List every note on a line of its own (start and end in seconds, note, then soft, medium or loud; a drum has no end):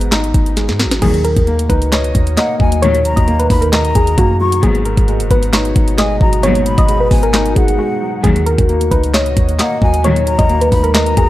0.00 0.33 G#1 loud
0.00 0.34 G#2 medium
0.00 0.12 F#3 medium
0.00 0.57 G#3 medium
0.00 1.03 B3 medium
0.00 0.12 D#4 loud
0.00 closed hi-hat medium
0.12 1.02 D#4 loud
0.12 snare loud
0.12 clap medium
0.12 closed hi-hat medium
0.24 closed hi-hat medium
0.34 0.70 G#1 loud
0.34 kick loud
0.34 closed hi-hat medium
0.46 closed hi-hat medium
0.57 1.02 G#3 medium
0.57 snare medium
0.57 closed hi-hat medium
0.69 0.87 G#2 loud
0.69 snare medium
0.79 1.02 F#3 medium
0.79 snare medium
0.85 1.01 G#1 loud
0.91 snare medium
0.91 closed hi-hat medium
1.02 1.35 D#2 loud
1.02 1.35 A#2 loud
1.02 2.15 D#3 medium
1.02 4.59 D#3 medium
1.02 1.35 F#3 loud
1.02 4.59 A#3 medium
1.02 11.29 F#4 medium
1.02 1.19 G#4 loud
1.02 kick loud
1.02 closed hi-hat medium
1.02 crash loud
1.14 closed hi-hat medium
1.24 1.67 A#4 medium
1.24 closed hi-hat medium
1.37 1.68 D#2 loud
1.37 kick loud
1.37 closed hi-hat medium
1.47 2.36 A#3 medium
1.47 closed hi-hat soft
1.59 closed hi-hat medium
1.69 2.13 C#2 loud
1.69 2.82 D#4 medium
1.69 1.87 B4 medium
1.69 kick medium
1.69 closed hi-hat medium
1.82 closed hi-hat medium
1.92 2.35 C#5 medium
1.92 3.05 D#5 loud
1.92 snare loud
1.92 clap loud
1.92 closed hi-hat medium
2.04 closed hi-hat medium
2.15 2.37 D#2 loud
2.15 kick loud
2.15 closed hi-hat loud
2.27 closed hi-hat medium
2.37 3.26 A#3 medium
2.37 2.80 D#5 medium
2.37 2.59 F#5 medium
2.37 snare loud
2.37 clap medium
2.37 closed hi-hat medium
2.60 3.15 D#2 loud
2.60 3.73 F#3 medium
2.60 2.81 G#5 medium
2.60 kick loud
2.72 closed hi-hat medium
2.82 3.15 D#2 loud
2.82 3.15 A#2 medium
2.82 3.95 D#3 medium
2.82 3.15 F#3 loud
2.82 3.15 C#5 loud
2.82 closed hi-hat medium
2.95 closed hi-hat medium
3.05 3.47 A#5 medium
3.05 closed hi-hat medium
3.16 3.49 D#2 loud
3.16 3.34 D#5 medium
3.16 kick loud
3.16 closed hi-hat medium
3.27 4.16 A#3 medium
3.27 closed hi-hat soft
3.39 3.57 B4 medium
3.39 closed hi-hat medium
3.50 3.94 D#2 loud
3.50 4.63 D#4 medium
3.50 3.72 B5 medium
3.50 kick medium
3.50 open hi-hat medium
3.61 3.93 A#4 medium
3.61 closed hi-hat medium
3.73 4.63 D#5 loud
3.73 4.36 A#5 loud
3.73 snare loud
3.73 clap medium
3.73 closed hi-hat medium
3.85 closed hi-hat medium
3.95 4.17 D#2 loud
3.95 4.13 G#4 medium
3.95 kick loud
3.95 closed hi-hat medium
4.07 closed hi-hat medium
4.18 4.61 F#2 loud
4.18 4.63 A#3 medium
4.18 4.61 F#4 medium
4.18 kick loud
4.18 closed hi-hat medium
4.40 4.63 F#3 medium
4.40 4.62 C#6 medium
4.52 closed hi-hat medium
4.63 4.96 G#1 loud
4.63 4.96 D#2 loud
4.63 5.76 G#2 loud
4.63 8.20 B2 medium
4.63 4.96 B2 loud
4.63 4.96 F#3 loud
4.63 8.20 G#3 medium
4.63 4.81 G#4 loud
4.63 kick loud
4.63 closed hi-hat medium
4.75 closed hi-hat medium
4.85 5.28 A#4 medium
4.85 closed hi-hat medium
4.97 5.21 G#1 loud
4.97 kick loud
4.97 closed hi-hat medium
5.08 5.97 G#3 loud
5.08 closed hi-hat soft
5.20 5.30 F#1 loud
5.20 closed hi-hat medium
5.30 5.74 G#1 loud
5.30 6.43 B3 medium
5.30 5.48 B4 loud
5.30 kick medium
5.30 closed hi-hat medium
5.43 closed hi-hat medium
5.53 6.66 D#4 loud
5.53 5.96 C#5 medium
5.53 snare loud
5.53 clap loud
5.53 closed hi-hat medium
5.65 closed hi-hat medium
5.76 6.19 G#1 loud
5.76 kick loud
5.76 closed hi-hat medium
5.88 closed hi-hat medium
5.98 6.87 G#3 medium
5.98 6.41 D#5 medium
5.98 6.20 G#5 medium
5.98 snare loud
5.98 clap medium
5.98 closed hi-hat medium
6.21 6.76 G#1 loud
6.21 7.34 F#3 medium
6.21 6.42 A#5 medium
6.21 kick loud
6.33 closed hi-hat medium
6.43 6.76 D#2 loud
6.43 7.56 G#2 medium
6.43 6.76 B2 loud
6.43 6.76 F#3 loud
6.43 6.76 C#5 loud
6.43 closed hi-hat medium
6.55 closed hi-hat medium
6.66 7.08 B5 medium
6.66 closed hi-hat medium
6.78 7.10 G#1 loud
6.78 6.96 D#5 medium
6.78 kick loud
6.78 closed hi-hat medium
6.88 7.77 G#3 medium
6.88 closed hi-hat medium
7.00 7.18 B4 medium
7.11 7.54 G#1 loud
7.11 8.24 B3 medium
7.11 7.53 G#5 medium
7.11 kick medium
7.11 open hi-hat medium
7.23 7.54 A#4 medium
7.23 closed hi-hat medium
7.34 8.24 D#4 loud
7.34 snare loud
7.34 clap loud
7.34 closed hi-hat medium
7.46 closed hi-hat medium
7.56 7.79 G#1 loud
7.56 7.74 G#4 medium
7.56 8.20 F#5 medium
7.56 kick loud
7.56 closed hi-hat medium
7.68 closed hi-hat medium
7.79 8.24 G#3 medium
7.79 8.21 F#4 medium
8.01 8.24 F#3 medium
8.24 8.57 D#2 loud
8.24 8.57 A#2 loud
8.24 9.37 D#3 medium
8.24 11.29 D#3 medium
8.24 8.57 F#3 loud
8.24 10.03 A#3 medium
8.24 8.41 G#4 loud
8.24 kick loud
8.24 closed hi-hat medium
8.36 closed hi-hat medium
8.46 8.89 A#4 medium
8.46 closed hi-hat medium
8.58 8.90 D#2 loud
8.58 kick loud
8.58 closed hi-hat medium
8.69 9.58 A#3 medium
8.69 closed hi-hat soft
8.81 closed hi-hat medium
8.91 9.35 C#2 loud
8.91 10.04 D#4 medium
8.91 9.09 B4 medium
8.91 kick medium
8.91 closed hi-hat medium
9.04 closed hi-hat medium
9.14 9.57 C#5 medium
9.14 10.27 D#5 loud
9.14 snare loud
9.14 clap loud
9.14 closed hi-hat medium
9.26 closed hi-hat medium
9.37 9.58 D#2 loud
9.37 kick loud
9.37 closed hi-hat medium
9.49 closed hi-hat medium
9.59 10.48 A#3 medium
9.59 10.02 D#5 medium
9.59 9.81 F#5 medium
9.59 snare medium
9.59 clap medium
9.59 closed hi-hat medium
9.82 10.37 D#2 loud
9.82 10.95 F#3 medium
9.82 10.03 G#5 medium
9.82 kick loud
9.94 closed hi-hat medium
10.04 10.37 D#2 loud
10.04 10.37 A#2 medium
10.04 11.17 D#3 medium
10.04 10.37 F#3 loud
10.04 11.29 G#3 medium
10.04 10.37 C#5 loud
10.04 closed hi-hat medium
10.16 closed hi-hat medium
10.27 10.69 A#5 loud
10.27 closed hi-hat medium
10.39 10.71 D#2 loud
10.39 10.56 D#5 medium
10.39 kick loud
10.39 closed hi-hat medium
10.49 11.29 A#3 medium
10.49 closed hi-hat soft
10.61 10.79 B4 medium
10.61 closed hi-hat medium
10.72 11.15 D#2 loud
10.72 11.29 D#4 medium
10.72 10.93 B5 medium
10.72 kick medium
10.72 open hi-hat medium
10.83 11.15 A#4 medium
10.83 closed hi-hat medium
10.94 11.29 D#5 medium
10.94 11.29 A#5 loud
10.94 snare loud
10.94 clap loud
10.94 closed hi-hat medium
11.06 closed hi-hat medium
11.17 11.29 D#2 loud
11.17 11.29 G#4 medium
11.17 kick loud
11.17 closed hi-hat medium